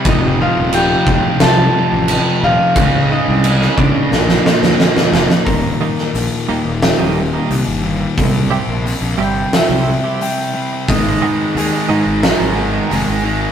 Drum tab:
CC |x---x---x---x---|x---x-----------|----------------|----------------|
HH |----------------|----------------|o---o---o---o---|o---o---o---o---|
SD |--------o-------|-----o--oooooooo|---o----o-------|--------o-------|
BD |o-----o---------|o-----o---------|o---------------|o---------------|

CC |----------------|
HH |o---o---o---o---|
SD |--------o-------|
BD |o---------------|